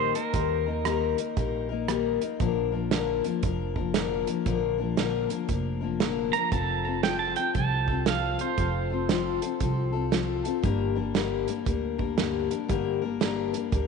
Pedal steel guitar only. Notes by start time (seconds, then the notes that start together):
Already playing: C5
0.16 A#4
6.33 A#5
6.53 A5
7.04 G5
7.19 A5
7.36 G5
7.55 A5
8.08 F5
8.41 C5